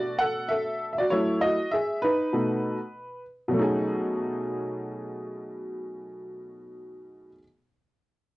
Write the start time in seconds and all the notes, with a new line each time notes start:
Already playing: B2 A3 D4 F#4 D5
0.19 A4 F#5
0.49 A4 E5
0.93 E5
0.98 F#4 D5
1.10 F#3 A3 E4 C#5
1.41 F#4 D#5
1.71 G#4 E5
2.02 D#4 B4
2.33 B2 A3 D#4
3.48 B2 F#3
3.53 A3 C#4
3.59 D#4 G#4